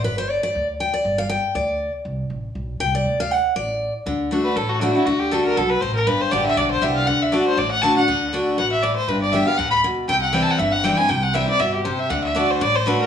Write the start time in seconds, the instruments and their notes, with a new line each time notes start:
0.04 upright bass G1, steel-string acoustic guitar B4
0.18 steel-string acoustic guitar C5
0.30 steel-string acoustic guitar D5
0.43 steel-string acoustic guitar D5
0.55 upright bass D2
0.80 steel-string acoustic guitar G5
0.94 steel-string acoustic guitar D5
1.05 upright bass G1
1.18 steel-string acoustic guitar F5
1.29 steel-string acoustic guitar G5
1.55 upright bass D2, steel-string acoustic guitar D5
2.05 upright bass C2
2.30 upright bass A1
2.55 upright bass B1
2.80 upright bass C2, steel-string acoustic guitar G5
2.95 steel-string acoustic guitar D5
3.05 upright bass D2
3.20 steel-string acoustic guitar F5
3.31 steel-string acoustic guitar F#5
3.56 upright bass A1, steel-string acoustic guitar D5
4.06 upright bass D2, steel-string acoustic guitar D3
4.31 steel-string acoustic guitar D3 A3 D4 F#4
4.44 fiddle B4
4.56 upright bass A1, steel-string acoustic guitar A2, fiddle A4
4.69 fiddle F#4
4.80 steel-string acoustic guitar D3 A3 D4 F#4, fiddle D4
4.94 steel-string acoustic guitar D4 F#4, fiddle E4
5.06 upright bass D2, steel-string acoustic guitar D3, fiddle F#4
5.20 fiddle G4
5.31 steel-string acoustic guitar D3 A3 D4 F#4, fiddle A4
5.44 fiddle A#4
5.57 upright bass B1, steel-string acoustic guitar B2, fiddle A4
5.70 fiddle B4
5.81 upright bass A1, steel-string acoustic guitar A2, fiddle C5
5.95 fiddle A#4
6.07 upright bass G1, steel-string acoustic guitar G2, fiddle B4
6.21 fiddle C5
6.31 upright bass A1, steel-string acoustic guitar D3 G3 B3 G4, fiddle D5
6.46 fiddle E5
6.57 upright bass B1, steel-string acoustic guitar D3, fiddle D5
6.71 fiddle C5
6.82 upright bass C2, steel-string acoustic guitar D3 G3 B3 G4, fiddle E5
6.96 fiddle F5
7.07 upright bass D2, steel-string acoustic guitar D3, fiddle F#5
7.22 fiddle E5
7.32 steel-string acoustic guitar D3 A3 D4 F#4, fiddle D5
7.47 fiddle C5
7.57 upright bass A1, steel-string acoustic guitar A2, fiddle D5
7.71 fiddle F#5
7.82 steel-string acoustic guitar D3 A3 D4 F#4, fiddle A5
7.96 steel-string acoustic guitar D4 F#4, fiddle F#5
8.08 upright bass D2, steel-string acoustic guitar D3
8.33 steel-string acoustic guitar D3 A3 D4 F#4
8.58 upright bass A1, steel-string acoustic guitar B2, fiddle F#5
8.72 fiddle E5
8.83 steel-string acoustic guitar A2, fiddle D5
8.96 fiddle C5
9.08 upright bass G1, steel-string acoustic guitar G2, fiddle B4
9.22 fiddle D5
9.32 steel-string acoustic guitar D3 G3 B3 G4, fiddle E5
9.47 steel-string acoustic guitar B3 G4, fiddle F5
9.58 upright bass D2, steel-string acoustic guitar A2, fiddle F#5
9.70 fiddle B5
9.84 steel-string acoustic guitar B2
10.08 upright bass C2, steel-string acoustic guitar C3, fiddle G5
10.22 fiddle F#5
10.33 steel-string acoustic guitar E3 G3 C4 E4, fiddle G5
10.43 fiddle A5
10.50 fiddle F#5
10.59 upright bass G1, steel-string acoustic guitar G2, fiddle E5
10.72 fiddle F#5
10.84 steel-string acoustic guitar E3 G3 C4 E4, fiddle G5
10.97 steel-string acoustic guitar C4 E4, fiddle G#5
11.09 upright bass C2, steel-string acoustic guitar C3, fiddle G5
11.23 fiddle F#5
11.34 steel-string acoustic guitar E3 G3 C4 E4, fiddle E5
11.48 steel-string acoustic guitar C4 E4, fiddle D5
11.59 upright bass G1, steel-string acoustic guitar B2, fiddle E5
11.74 fiddle G4
11.84 steel-string acoustic guitar C3, fiddle C5
11.99 fiddle E5
12.10 upright bass D2, steel-string acoustic guitar D3, fiddle F#5
12.24 fiddle E5
12.35 steel-string acoustic guitar D3 A3 D4 F#4, fiddle D5
12.51 fiddle C5
12.60 upright bass A1, steel-string acoustic guitar A2, fiddle D5
12.76 fiddle C5
12.86 steel-string acoustic guitar D3 A3 D4 F#4, fiddle B4
13.01 fiddle A#4